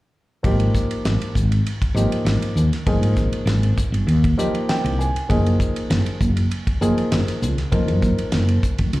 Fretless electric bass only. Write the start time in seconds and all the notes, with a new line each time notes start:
0.44 G#1
1.05 G#1
1.21 muted fretless electric bass stroke
1.36 G#1
1.82 muted fretless electric bass stroke
1.94 G#1
2.10 muted fretless electric bass stroke
2.25 G#1
2.41 muted fretless electric bass stroke
2.56 D#2
2.72 muted fretless electric bass stroke
2.87 G1
3.01 G#2
3.17 G#1
3.32 muted fretless electric bass stroke
3.46 G#1
3.78 muted fretless electric bass stroke
3.92 G1
4.07 D#2
4.84 C2
5.15 muted fretless electric bass stroke
5.30 F#1
5.90 F#1
6.21 F#1
6.67 muted fretless electric bass stroke
6.81 F#1
6.97 muted fretless electric bass stroke
7.12 F#1
7.28 muted fretless electric bass stroke
7.42 C#2
7.58 muted fretless electric bass stroke
7.72 F1
7.88 F#2
8.03 F#1
8.18 muted fretless electric bass stroke
8.33 F#1
8.63 muted fretless electric bass stroke
8.79 F1
8.93 C#2